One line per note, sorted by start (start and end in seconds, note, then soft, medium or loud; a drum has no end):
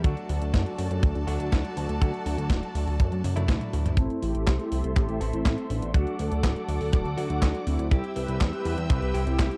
0.04 0.15 D2 loud
0.04 1.25 F#3 medium
0.04 1.25 A3 medium
0.04 1.25 D4 medium
0.04 3.94 F#4 medium
0.04 1.25 F#4 medium
0.04 3.94 A4 medium
0.04 3.94 D5 medium
0.04 3.94 A5 medium
0.04 kick loud
0.04 closed hi-hat medium
0.17 closed hi-hat soft
0.29 0.40 D2 loud
0.29 open hi-hat loud
0.42 0.52 D2 medium
0.42 closed hi-hat soft
0.54 0.65 F#2 loud
0.54 kick medium
0.54 snare loud
0.54 closed hi-hat medium
0.66 closed hi-hat soft
0.78 0.89 F#2 medium
0.78 open hi-hat loud
0.91 1.01 F#2 medium
0.91 closed hi-hat medium
1.03 1.14 D2 loud
1.03 kick loud
1.03 closed hi-hat medium
1.15 1.26 D2 medium
1.15 closed hi-hat soft
1.27 1.38 D2 medium
1.27 1.98 F#3 medium
1.27 1.98 A3 medium
1.27 1.98 D4 medium
1.27 1.98 F#4 medium
1.27 open hi-hat loud
1.40 1.51 D2 medium
1.40 closed hi-hat medium
1.52 1.63 D2 loud
1.52 kick medium
1.52 snare loud
1.52 closed hi-hat soft
1.65 closed hi-hat soft
1.77 1.88 D2 loud
1.77 open hi-hat loud
1.89 2.00 D2 medium
1.89 closed hi-hat soft
2.01 2.12 D2 loud
2.01 3.21 F#3 medium
2.01 3.21 A3 medium
2.01 3.21 D4 medium
2.01 3.21 F#4 medium
2.01 kick loud
2.01 closed hi-hat medium
2.14 closed hi-hat soft
2.26 2.37 D2 medium
2.26 open hi-hat loud
2.38 2.49 D2 medium
2.38 closed hi-hat medium
2.50 2.61 D1 loud
2.50 kick loud
2.50 snare loud
2.50 closed hi-hat medium
2.63 closed hi-hat soft
2.75 2.86 D2 medium
2.75 open hi-hat loud
2.87 2.98 D2 medium
2.87 open hi-hat medium
3.00 3.11 F#2 loud
3.00 kick loud
3.00 closed hi-hat medium
3.12 3.23 F#2 medium
3.12 closed hi-hat soft
3.24 3.35 F#2 medium
3.24 open hi-hat loud
3.24 high tom medium
3.36 3.47 F#2 medium
3.36 3.95 F#3 medium
3.36 3.95 A3 medium
3.36 3.95 D4 medium
3.36 3.95 E4 medium
3.36 closed hi-hat medium
3.36 high tom medium
3.48 3.59 D2 loud
3.48 kick medium
3.48 snare loud
3.48 closed hi-hat medium
3.48 mid tom medium
3.61 closed hi-hat soft
3.61 mid tom medium
3.73 3.84 D2 medium
3.73 open hi-hat loud
3.86 3.97 D2 medium
3.86 closed hi-hat medium
3.86 mid tom medium
3.97 4.08 A1 loud
3.97 5.18 A3 medium
3.97 5.18 C4 medium
3.97 4.19 C4 medium
3.97 4.19 E4 loud
3.97 5.18 E4 medium
3.97 5.93 A4 medium
3.97 5.18 A4 medium
3.97 5.93 C5 medium
3.97 5.93 E5 medium
3.97 5.93 C6 medium
3.97 kick loud
3.97 closed hi-hat medium
4.10 closed hi-hat soft
4.23 4.33 A1 loud
4.23 4.54 E4 medium
4.23 4.54 G4 loud
4.23 open hi-hat loud
4.35 4.46 A1 medium
4.35 closed hi-hat medium
4.47 4.58 C2 loud
4.47 kick medium
4.47 snare loud
4.47 clap medium
4.47 closed hi-hat medium
4.59 4.91 E4 medium
4.59 4.91 G4 medium
4.59 closed hi-hat soft
4.72 4.83 C2 loud
4.72 open hi-hat loud
4.84 4.95 C2 medium
4.84 closed hi-hat medium
4.96 5.07 A1 loud
4.96 5.28 E4 medium
4.96 5.28 G4 loud
4.96 kick loud
4.96 clap medium
4.96 closed hi-hat medium
5.09 5.20 A1 medium
5.09 closed hi-hat soft
5.21 5.32 A1 loud
5.21 5.92 A3 medium
5.21 5.92 C4 medium
5.21 5.92 E4 medium
5.21 5.92 A4 medium
5.21 open hi-hat loud
5.33 5.44 A1 medium
5.33 5.65 C4 medium
5.33 5.65 E4 loud
5.33 closed hi-hat medium
5.45 5.56 A1 loud
5.45 kick loud
5.45 snare loud
5.45 clap medium
5.45 closed hi-hat medium
5.58 closed hi-hat soft
5.70 5.81 A1 loud
5.70 5.91 B3 medium
5.70 5.91 D4 medium
5.70 open hi-hat loud
5.82 5.93 A1 medium
5.82 closed hi-hat medium
5.94 6.05 D2 loud
5.94 7.15 F#3 medium
5.94 7.15 A3 medium
5.94 6.16 D4 medium
5.94 7.15 D4 medium
5.94 6.16 F#4 loud
5.94 7.15 F#4 medium
5.94 7.89 A4 medium
5.94 7.89 D5 medium
5.94 7.89 F#5 medium
5.94 7.89 D6 medium
5.94 kick loud
5.94 closed hi-hat medium
6.07 closed hi-hat soft
6.19 6.30 D2 loud
6.19 6.51 F#4 medium
6.19 6.51 A4 medium
6.19 open hi-hat loud
6.32 6.42 D2 medium
6.32 closed hi-hat soft
6.43 6.55 D1 loud
6.43 kick loud
6.43 snare loud
6.43 clap medium
6.43 closed hi-hat medium
6.56 6.88 F#4 medium
6.56 6.88 A4 medium
6.56 closed hi-hat soft
6.68 6.79 D2 medium
6.68 open hi-hat loud
6.81 6.92 D2 medium
6.81 open hi-hat medium
6.93 7.04 D1 loud
6.93 7.25 F#4 medium
6.93 7.25 A4 medium
6.93 kick loud
6.93 clap medium
6.93 closed hi-hat soft
7.05 7.16 D2 medium
7.05 closed hi-hat soft
7.17 7.28 D2 medium
7.17 7.88 F#3 medium
7.17 7.88 A3 medium
7.17 7.88 D4 medium
7.17 7.89 F#4 medium
7.17 open hi-hat loud
7.30 7.41 D2 medium
7.30 7.62 D4 medium
7.30 7.62 F#4 loud
7.30 closed hi-hat medium
7.42 7.53 D2 loud
7.42 kick loud
7.42 snare loud
7.42 clap medium
7.42 closed hi-hat medium
7.55 closed hi-hat soft
7.67 7.78 D2 loud
7.67 7.88 C4 medium
7.67 7.88 E4 medium
7.67 open hi-hat loud
7.79 7.90 D2 medium
7.79 closed hi-hat soft
7.91 8.02 C2 loud
7.91 9.11 G3 medium
7.91 9.57 C4 medium
7.91 9.11 C4 medium
7.91 8.13 E4 medium
7.91 9.11 E4 medium
7.91 8.13 G4 loud
7.91 9.11 G4 medium
7.91 9.57 E5 medium
7.91 9.57 G5 medium
7.91 9.57 E6 medium
7.91 kick loud
7.91 closed hi-hat soft
8.04 closed hi-hat soft
8.16 8.27 C2 medium
8.16 8.48 G4 medium
8.16 8.48 B4 medium
8.16 open hi-hat loud
8.28 8.39 C2 medium
8.28 closed hi-hat soft
8.41 8.51 E2 loud
8.41 kick loud
8.41 snare loud
8.41 clap medium
8.41 closed hi-hat medium
8.53 8.85 G4 medium
8.53 8.85 B4 medium
8.53 closed hi-hat soft
8.65 8.76 E2 medium
8.65 open hi-hat loud
8.78 8.88 E2 medium
8.78 closed hi-hat soft
8.90 9.01 C2 loud
8.90 9.21 G4 medium
8.90 9.22 B4 medium
8.90 kick loud
8.90 clap medium
8.90 closed hi-hat soft
9.02 9.13 C2 medium
9.02 closed hi-hat soft
9.14 9.25 C2 medium
9.14 9.57 G3 medium
9.14 9.57 C4 medium
9.14 9.57 E4 medium
9.14 9.57 G4 medium
9.14 open hi-hat loud
9.27 9.38 C2 medium
9.27 9.57 E4 medium
9.27 9.57 G4 loud
9.27 closed hi-hat medium
9.39 9.50 C2 loud
9.39 kick loud
9.39 snare loud
9.39 clap medium
9.39 closed hi-hat medium
9.51 closed hi-hat soft